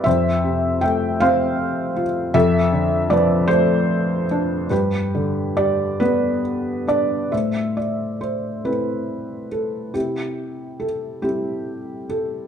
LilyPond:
<<
  \new Staff \with { instrumentName = "Felt piano" } { \time 6/8 \key g \mixolydian \tempo 4. = 47 << { e''4 g''8 f''4 r8 | e''4 d''8 c''4. | b'4 d''8 b'4 d''8 | \key a \minor e''8 d''8 c''8 b'4 a'8 |
g'4 a'8 g'4 a'8 | } \\ { c''4 e''8 c''4 r8 | a'4 b'8 a'4. | g'2 r4 | c''4. r4. |
e'4. r4. | } >> }
  \new Staff \with { instrumentName = "Felt piano" } { \time 6/8 \key g \mixolydian f,8 c8 a8 c'4 f'8 | f,8 d8 f8 a4 d'8 | g,8 d8 g8 b4 d'8 | \key a \minor a,4. <a c' e'>4. |
c4. <g c' e'>4. | }
>>